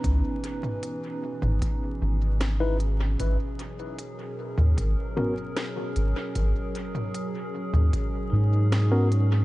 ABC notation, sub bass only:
X:1
M:4/4
L:1/16
Q:1/4=76
K:G#m
V:1 name="Sub bass" clef=bass
C,, z6 G,,, z2 G,,,6 | G,,, z6 D,, G,,, z4 z G,,, z | G,,, z6 D,, z2 G,,6 |]